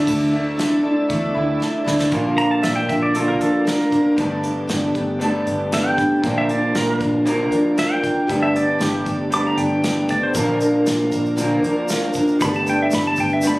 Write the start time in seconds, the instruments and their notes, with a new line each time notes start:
0.05 fingered electric bass D2, steel-string acoustic guitar D3 A3 D4 E4 A4, tonewheel organ E4 A4 D5 E5, kick, crash
0.30 clean electric guitar A3, steel-string acoustic guitar D4 E4 A4
0.57 clean electric guitar D3, steel-string acoustic guitar A3 D4 E4 A4, snare, closed hi-hat
0.83 steel-string acoustic guitar D4 E4 A4
1.10 fingered electric bass E2, steel-string acoustic guitar D3 A3 D4 E4 A4, kick, closed hi-hat
1.34 fingered electric bass D2, steel-string acoustic guitar D4 E4 A4
1.60 steel-string acoustic guitar A3 D4 E4 A4, snare
1.81 tonewheel organ G3 A3, steel-string acoustic guitar A4
1.86 fingered electric bass D2, tonewheel organ B3 C4, steel-string acoustic guitar D4 E4, snare
1.92 tonewheel organ D4 E4
1.97 tonewheel organ F4, snare
2.01 tonewheel organ G4 A4
2.07 steel-string acoustic guitar A#2, tonewheel organ B4 C5
2.11 fingered electric bass A#1, steel-string acoustic guitar D3 F3 A#3 D4 A#4, tonewheel organ D4 F4 A#4 D5, clean electric guitar F4, kick, closed hi-hat
2.36 steel-string acoustic guitar F3 A#3 D4 A#4, pedal steel guitar A#5, closed hi-hat
2.51 pedal steel guitar A5
2.62 fingered electric bass A#1, steel-string acoustic guitar F3 A#3 D4 A#4, pedal steel guitar E5, snare, closed hi-hat
2.76 pedal steel guitar G5
2.88 fingered electric bass A#1, steel-string acoustic guitar F3 A#3 D4 A#4, pedal steel guitar E5, kick, closed hi-hat
3.03 pedal steel guitar D5
3.14 steel-string acoustic guitar A#2 D3 F3 A#3 D4 A#4, clean electric guitar F4, pedal steel guitar A4, closed hi-hat
3.28 pedal steel guitar A#4
3.40 fingered electric bass F2, steel-string acoustic guitar F3 A#3 D4 A#4, pedal steel guitar A4, closed hi-hat
3.65 steel-string acoustic guitar F3 A#3 D4 A#4, pedal steel guitar A#4, snare, closed hi-hat
3.80 snare
3.91 steel-string acoustic guitar F3 A#3 D4 A#4, kick, closed hi-hat
4.16 fingered electric bass G1, steel-string acoustic guitar G2 D3 A3 B3 D4 B4, clean electric guitar G3 A4, tonewheel organ B3 D4 G4 A4, kick, closed hi-hat
4.43 steel-string acoustic guitar A3 B3 D4 B4, closed hi-hat
4.67 fingered electric bass G1, steel-string acoustic guitar A3 B3 D4 B4, snare, closed hi-hat
4.94 fingered electric bass G1, steel-string acoustic guitar A3 B3 D4 B4, kick, closed hi-hat
5.19 steel-string acoustic guitar G2 D3 A3 B3 D4 B4, clean electric guitar G3 A4, closed hi-hat
5.46 fingered electric bass G1, steel-string acoustic guitar A3 B3 D4 B4, closed hi-hat
5.72 steel-string acoustic guitar A3 B3 D4 B4, pedal steel guitar E5, snare, closed hi-hat
5.87 pedal steel guitar G5
5.97 steel-string acoustic guitar A3 B3 D4 B4, kick, closed hi-hat
6.24 fingered electric bass A#1, steel-string acoustic guitar A#2 D3 F3 A#3 D4 A#4, tonewheel organ A#3 D4 F4 A#4, kick, closed hi-hat
6.38 pedal steel guitar E5
6.49 steel-string acoustic guitar F3 A#3 D4 A#4, pedal steel guitar D5, closed hi-hat
6.74 fingered electric bass A#1, steel-string acoustic guitar F3 A#3 D4 A#4, pedal steel guitar A#4, snare, closed hi-hat
6.99 fingered electric bass A#1, steel-string acoustic guitar A#3 D4 A#4, kick, closed hi-hat
7.03 steel-string acoustic guitar F3
7.25 steel-string acoustic guitar A#2 D3 F3 A#3 D4 A#4, closed hi-hat
7.51 fingered electric bass F2, steel-string acoustic guitar F3 A#3 D4 A#4, closed hi-hat
7.76 steel-string acoustic guitar F3 A#3 D4 A#4, pedal steel guitar E5, snare, closed hi-hat
7.92 pedal steel guitar G5
8.02 steel-string acoustic guitar F3 A#3 D4 A#4, kick, closed hi-hat
8.27 fingered electric bass G1, steel-string acoustic guitar G2 D3 A3 B3 D4 A4, clean electric guitar G3, tonewheel organ B3 D4 G4 A4, kick, closed hi-hat
8.43 pedal steel guitar E5
8.53 steel-string acoustic guitar A3 B3 D4 A4, pedal steel guitar D5, closed hi-hat
8.79 fingered electric bass G1, steel-string acoustic guitar A3 B3 D4 A4, pedal steel guitar G4, snare, closed hi-hat
9.05 fingered electric bass G1, steel-string acoustic guitar A3 B3 D4 A4, kick, closed hi-hat
9.30 steel-string acoustic guitar G2 D3 A3 B3 D4 A4, clean electric guitar G3, pedal steel guitar D6, closed hi-hat
9.47 pedal steel guitar A#5
9.57 fingered electric bass G1, steel-string acoustic guitar A3 B3 D4 A4, pedal steel guitar G5, closed hi-hat
9.82 steel-string acoustic guitar A3 B3 D4 A4, snare, closed hi-hat
10.08 steel-string acoustic guitar A3 B3 D4 A4, pedal steel guitar D5, kick, closed hi-hat
10.23 pedal steel guitar C5
10.33 fingered electric bass A#1, steel-string acoustic guitar A#2 D3 F3 A#3 D4 A#4, tonewheel organ A#3 D4 F4 A#4, pedal steel guitar A#4, kick, closed hi-hat, shaker
10.61 steel-string acoustic guitar F3 A#3 D4 A#4, closed hi-hat, shaker
10.86 fingered electric bass A#1, steel-string acoustic guitar F3 A#3 D4 A#4, snare, closed hi-hat, shaker
10.99 shaker
11.11 fingered electric bass A#1, steel-string acoustic guitar F3 A#3 D4 A#4, kick, closed hi-hat, shaker
11.26 shaker
11.36 steel-string acoustic guitar A#2 D3 F3 A#3 D4 A#4, closed hi-hat, shaker
11.62 fingered electric bass F2, steel-string acoustic guitar F3 A#3 D4 A#4, closed hi-hat
11.88 steel-string acoustic guitar F3 A#3 D4 A#4, snare, closed hi-hat, shaker
12.01 shaker
12.13 steel-string acoustic guitar A#3 D4 A#4, kick, closed hi-hat, shaker
12.18 steel-string acoustic guitar F3
12.27 shaker
12.39 fingered electric bass G1, steel-string acoustic guitar G2 D3 A3 B3 D4 B4, clean electric guitar G3 A4, tonewheel organ B3 D4 G4 A4, pedal steel guitar B5, kick, closed hi-hat, shaker
12.53 pedal steel guitar A5, shaker
12.65 steel-string acoustic guitar A3 B3 D4 B4, closed hi-hat, shaker
12.69 pedal steel guitar G5
12.83 pedal steel guitar E5
12.90 fingered electric bass G1, steel-string acoustic guitar A3 B3 D4 B4, snare, closed hi-hat, shaker
12.95 pedal steel guitar B5
13.04 pedal steel guitar A5, shaker
13.16 fingered electric bass G1, steel-string acoustic guitar A3 B3 D4 B4, kick, closed hi-hat, shaker
13.20 pedal steel guitar G5
13.29 pedal steel guitar E5, shaker
13.42 steel-string acoustic guitar G2 D3 A3 B3 D4 B4, clean electric guitar G3, closed hi-hat, shaker
13.46 clean electric guitar A4, pedal steel guitar B5